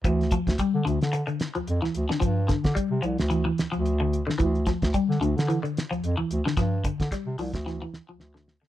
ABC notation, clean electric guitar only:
X:1
M:4/4
L:1/16
Q:"Swing 16ths" 1/4=110
K:Dm
V:1 name="Clean electric guitar" clef=bass
E,2 F,2 G,2 D,2 z D,2 F,2 E,2 D, | F,2 D,2 G,2 F,2 E, E,2 F,2 D,2 D, | E,2 F,2 G,2 D,2 E, D,2 F,2 E,2 D, | F,2 D,2 G,2 F,2 E, E,2 F,2 D,2 D, |]